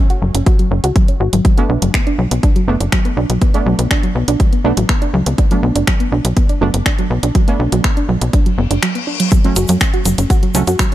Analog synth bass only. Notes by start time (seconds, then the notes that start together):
0.22 F#1
0.35 F#1
0.71 F#1
0.84 C#2
1.20 G#1
1.33 G#1
1.69 B1
1.82 F#1
2.19 B1
2.31 B1
2.68 F#1
2.81 F#1
3.17 B1
3.30 B1
3.66 B1
3.79 B1
4.15 B1
4.28 B1
4.65 B1
4.77 A1
5.14 C#2
5.26 C#2
5.63 B1
5.76 F#1
6.12 B1
6.25 B1
6.61 F#1
6.74 F#1
7.10 B1
7.23 B1
7.60 B1
7.72 B1
8.09 B1
8.22 B1
8.58 F#1
8.71 F#1
9.56 F#1
9.69 F#2
10.06 F#1
10.18 F#1
10.55 C#2
10.67 F#2